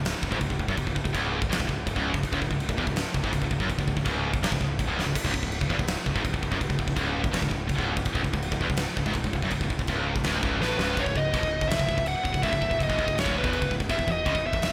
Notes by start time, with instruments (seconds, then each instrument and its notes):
Already playing: picked electric bass C#1, distorted electric guitar C#2
0.05 snare, china
0.22 picked electric bass C#1, distorted electric guitar C#2, kick
0.30 picked electric bass G#1, distorted electric guitar G#2, kick
0.41 picked electric bass C#1, distorted electric guitar C#2, kick, china
0.50 picked electric bass C#1, distorted electric guitar C#2, kick
0.59 picked electric bass C#1, distorted electric guitar C#2, kick
0.68 picked electric bass F#1, distorted electric guitar F#2, kick
0.77 picked electric bass C#1, distorted electric guitar C#2, kick, china
0.87 picked electric bass C#1, distorted electric guitar C#2, kick
0.95 picked electric bass C#1, distorted electric guitar C#2, kick
1.05 picked electric bass C#1, distorted electric guitar C#2, kick
1.14 picked electric bass C#1, distorted electric guitar C#2, kick, china
1.41 picked electric bass C#1, distorted electric guitar C#2, kick
1.49 picked electric bass E1, distorted electric guitar E2, snare, china
1.59 picked electric bass C#1, distorted electric guitar C#2, kick
1.67 picked electric bass C#1, distorted electric guitar C#2, kick
1.86 picked electric bass C#1, distorted electric guitar C#2, kick, china
1.95 picked electric bass C#1, distorted electric guitar C#2, kick
2.13 picked electric bass C#1, distorted electric guitar C#2, kick
2.23 kick, china
2.32 picked electric bass C#1, distorted electric guitar C#2, kick
2.41 picked electric bass C#1, distorted electric guitar C#2, kick
2.51 picked electric bass C#1, distorted electric guitar C#2, kick
2.60 china
2.69 picked electric bass C#1, distorted electric guitar C#2, kick
2.77 picked electric bass E1, distorted electric guitar E2, kick
2.86 picked electric bass C#1, distorted electric guitar C#2, kick
2.96 snare, china
3.14 picked electric bass C#1, distorted electric guitar C#2, kick
3.23 picked electric bass G#1, distorted electric guitar G#2, kick
3.33 picked electric bass C#1, distorted electric guitar C#2, kick, china
3.42 picked electric bass C#1, distorted electric guitar C#2, kick
3.51 picked electric bass C#1, distorted electric guitar C#2, kick
3.60 picked electric bass F#1, distorted electric guitar F#2, kick
3.69 picked electric bass C#1, distorted electric guitar C#2, kick, china
3.78 picked electric bass C#1, distorted electric guitar C#2, kick
3.88 picked electric bass C#1, distorted electric guitar C#2, kick
3.97 picked electric bass C#1, distorted electric guitar C#2, kick
4.05 picked electric bass C#1, distorted electric guitar C#2, kick, china
4.33 picked electric bass C#1, distorted electric guitar C#2, kick
4.41 picked electric bass E1, distorted electric guitar E2, snare, china
4.51 picked electric bass C#1, distorted electric guitar C#2, kick
4.61 picked electric bass C#1, distorted electric guitar C#2, kick
4.79 picked electric bass C#1, distorted electric guitar C#2, kick, china
4.86 picked electric bass C#1, distorted electric guitar C#2
4.99 snare
5.04 picked electric bass C#1, distorted electric guitar C#2
5.15 kick, china, crash
5.24 picked electric bass C#1, distorted electric guitar C#2, kick
5.33 picked electric bass C#1, distorted electric guitar C#2, kick
5.42 picked electric bass C#1, distorted electric guitar C#2, kick
5.52 china
5.61 picked electric bass C#1, distorted electric guitar C#2, kick
5.70 picked electric bass E1, distorted electric guitar E2, kick
5.79 picked electric bass C#1, distorted electric guitar C#2, kick
5.87 snare, china
6.06 picked electric bass C#1, distorted electric guitar C#2, kick
6.15 picked electric bass G#1, distorted electric guitar G#2, kick
6.24 picked electric bass C#1, distorted electric guitar C#2, kick, china
6.33 picked electric bass C#1, distorted electric guitar C#2, kick
6.43 picked electric bass C#1, distorted electric guitar C#2, kick
6.51 picked electric bass F#1, distorted electric guitar F#2, kick
6.61 picked electric bass C#1, distorted electric guitar C#2, kick, china
6.69 picked electric bass C#1, distorted electric guitar C#2, kick
6.78 picked electric bass C#1, distorted electric guitar C#2, kick
6.87 picked electric bass C#1, distorted electric guitar C#2, kick
6.96 picked electric bass C#1, distorted electric guitar C#2, kick, china
7.23 picked electric bass C#1, distorted electric guitar C#2, kick
7.31 picked electric bass E1, distorted electric guitar E2, snare, china
7.41 picked electric bass C#1, distorted electric guitar C#2, kick
7.49 picked electric bass C#1, distorted electric guitar C#2, kick
7.68 picked electric bass C#1, distorted electric guitar C#2, kick, china
7.77 picked electric bass C#1, distorted electric guitar C#2, kick
7.96 picked electric bass C#1, distorted electric guitar C#2, kick
8.05 kick, china
8.15 picked electric bass C#1, distorted electric guitar C#2, kick
8.23 picked electric bass C#1, distorted electric guitar C#2, kick
8.33 picked electric bass C#1, distorted electric guitar C#2, kick
8.42 china
8.52 picked electric bass C#1, distorted electric guitar C#2, kick
8.61 picked electric bass E1, distorted electric guitar E2, kick
8.69 picked electric bass C#1, distorted electric guitar C#2, kick
8.77 snare, china
8.97 picked electric bass C#1, distorted electric guitar C#2, kick
9.06 picked electric bass G#1, distorted electric guitar G#2, kick
9.13 picked electric bass C#1, distorted electric guitar C#2, kick, china
9.24 picked electric bass C#1, distorted electric guitar C#2, kick
9.33 picked electric bass C#1, distorted electric guitar C#2, kick
9.42 picked electric bass F#1, distorted electric guitar F#2, kick
9.50 picked electric bass C#1, distorted electric guitar C#2, kick, china
9.60 picked electric bass C#1, distorted electric guitar C#2, kick
9.70 picked electric bass C#1, distorted electric guitar C#2, kick
9.79 picked electric bass C#1, distorted electric guitar C#2, kick
9.87 picked electric bass C#1, distorted electric guitar C#2, kick, china
10.15 picked electric bass C#1, distorted electric guitar C#2, kick
10.24 picked electric bass D1, distorted electric guitar D2, snare, china
10.43 picked electric bass C#1, distorted electric guitar C#2, kick
10.59 picked electric bass A1, distorted electric guitar A2, lead electric guitar B4, snare
10.77 picked electric bass C#1, distorted electric guitar C#2, snare
10.97 picked electric bass C#1, distorted electric guitar C#2, lead electric guitar C#5, kick, china
11.06 picked electric bass C#1, distorted electric guitar C#2, kick
11.15 picked electric bass C#1, distorted electric guitar C#2, lead electric guitar D#5, kick
11.33 picked electric bass B1, distorted electric guitar B2, kick, china
11.43 picked electric bass C#1, distorted electric guitar C#2, kick
11.61 picked electric bass C#1, distorted electric guitar C#2, kick
11.67 picked electric bass C#1, distorted electric guitar C#2, lead electric guitar E5, china
11.72 snare
11.79 picked electric bass C#1, distorted electric guitar C#2, kick
11.88 picked electric bass C#1, distorted electric guitar C#2, kick
11.98 picked electric bass C#1, distorted electric guitar C#2, kick
12.06 lead electric guitar F#5, china
12.25 picked electric bass C#1, distorted electric guitar C#2, kick
12.34 picked electric bass C#1, distorted electric guitar C#2, kick
12.43 picked electric bass C#1, distorted electric guitar C#2, lead electric guitar E5, kick, china
12.52 picked electric bass C#1, distorted electric guitar C#2, kick
12.61 picked electric bass C#1, distorted electric guitar C#2, kick
12.71 picked electric bass C#1, distorted electric guitar C#2, kick
12.80 picked electric bass C#1, distorted electric guitar C#2, lead electric guitar D#5, kick, china
12.89 picked electric bass A1, distorted electric guitar A2, kick
12.98 picked electric bass C#1, distorted electric guitar C#2, kick
13.07 picked electric bass C#1, distorted electric guitar C#2, kick
13.15 picked electric bass C#1, distorted electric guitar C#2, china
13.19 lead electric guitar C#5, snare
13.24 picked electric bass D1, distorted electric guitar D2, kick
13.38 lead electric guitar B4
13.43 picked electric bass E1, distorted electric guitar E2, kick
13.53 china
13.61 picked electric bass C#1, distorted electric guitar C#2, kick
13.70 picked electric bass C#1, distorted electric guitar C#2, kick
13.79 picked electric bass C#1, distorted electric guitar C#2, kick
13.89 picked electric bass E1, distorted electric guitar E2, lead electric guitar E5, kick, china
13.98 picked electric bass E1, distorted electric guitar E2, kick
14.07 picked electric bass E1, distorted electric guitar E2, kick
14.12 lead electric guitar D#5
14.25 picked electric bass C#2, distorted electric guitar C#3, kick, china
14.34 picked electric bass E1, distorted electric guitar E2, kick
14.47 lead electric guitar E5
14.53 picked electric bass E1, distorted electric guitar E2, kick
14.62 picked electric bass E1, distorted electric guitar E2, snare, china